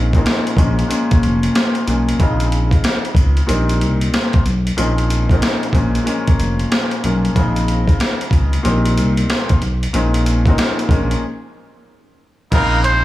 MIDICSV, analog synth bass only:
0, 0, Header, 1, 2, 480
1, 0, Start_track
1, 0, Tempo, 645161
1, 1635, Time_signature, 4, 2, 24, 8
1, 9705, End_track
2, 0, Start_track
2, 0, Title_t, "Analog synth bass"
2, 0, Program_c, 0, 38
2, 0, Note_on_c, 0, 34, 103
2, 102, Note_off_c, 0, 34, 0
2, 422, Note_on_c, 0, 34, 96
2, 620, Note_off_c, 0, 34, 0
2, 917, Note_on_c, 0, 29, 84
2, 1109, Note_off_c, 0, 29, 0
2, 1396, Note_on_c, 0, 35, 90
2, 1589, Note_off_c, 0, 35, 0
2, 1635, Note_on_c, 0, 34, 100
2, 2021, Note_off_c, 0, 34, 0
2, 2342, Note_on_c, 0, 37, 92
2, 2540, Note_off_c, 0, 37, 0
2, 2596, Note_on_c, 0, 34, 103
2, 2837, Note_on_c, 0, 36, 94
2, 2848, Note_off_c, 0, 34, 0
2, 3029, Note_off_c, 0, 36, 0
2, 3316, Note_on_c, 0, 35, 96
2, 3509, Note_off_c, 0, 35, 0
2, 3556, Note_on_c, 0, 34, 105
2, 3942, Note_off_c, 0, 34, 0
2, 4262, Note_on_c, 0, 34, 97
2, 4460, Note_off_c, 0, 34, 0
2, 4757, Note_on_c, 0, 29, 90
2, 4949, Note_off_c, 0, 29, 0
2, 5236, Note_on_c, 0, 35, 93
2, 5429, Note_off_c, 0, 35, 0
2, 5475, Note_on_c, 0, 34, 103
2, 5861, Note_off_c, 0, 34, 0
2, 6182, Note_on_c, 0, 37, 92
2, 6380, Note_off_c, 0, 37, 0
2, 6436, Note_on_c, 0, 34, 98
2, 6676, Note_on_c, 0, 36, 97
2, 6687, Note_off_c, 0, 34, 0
2, 6869, Note_off_c, 0, 36, 0
2, 7156, Note_on_c, 0, 35, 96
2, 7348, Note_off_c, 0, 35, 0
2, 7396, Note_on_c, 0, 34, 102
2, 7781, Note_off_c, 0, 34, 0
2, 8102, Note_on_c, 0, 34, 97
2, 8300, Note_off_c, 0, 34, 0
2, 9315, Note_on_c, 0, 34, 102
2, 9701, Note_off_c, 0, 34, 0
2, 9705, End_track
0, 0, End_of_file